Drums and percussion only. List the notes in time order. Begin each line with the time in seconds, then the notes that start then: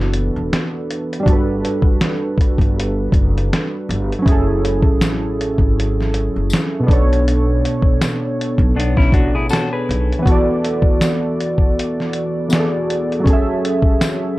0.14 closed hi-hat
0.53 snare, closed hi-hat
0.91 closed hi-hat
1.13 closed hi-hat
1.26 kick, closed hi-hat
1.65 closed hi-hat
1.82 kick
2.01 snare, closed hi-hat
2.38 kick, closed hi-hat
2.58 kick, closed hi-hat
2.80 closed hi-hat
3.12 kick, closed hi-hat
3.38 closed hi-hat
3.53 snare, closed hi-hat
3.91 closed hi-hat
4.12 closed hi-hat
4.26 kick, closed hi-hat
4.65 closed hi-hat
4.82 kick
5.01 snare, closed hi-hat, tambourine
5.41 closed hi-hat
5.58 kick
5.80 closed hi-hat
6.01 snare
6.14 closed hi-hat
6.50 snare, tambourine
6.54 closed hi-hat
6.88 kick, closed hi-hat
7.13 closed hi-hat
7.28 closed hi-hat
7.65 closed hi-hat
7.82 kick
8.01 snare, closed hi-hat, tambourine
8.41 closed hi-hat
8.58 kick
8.80 closed hi-hat
8.97 kick, snare
9.12 kick, closed hi-hat
9.49 snare, tambourine
9.54 closed hi-hat
9.91 closed hi-hat
10.12 closed hi-hat
10.26 kick, closed hi-hat
10.65 closed hi-hat
10.82 kick
11.01 snare, closed hi-hat, tambourine
11.40 closed hi-hat
11.58 kick
11.79 closed hi-hat
12.00 snare
12.13 closed hi-hat
12.50 snare, closed hi-hat, tambourine
12.90 closed hi-hat
13.12 closed hi-hat
13.26 kick, closed hi-hat
13.65 closed hi-hat
13.82 kick
14.01 snare, closed hi-hat, tambourine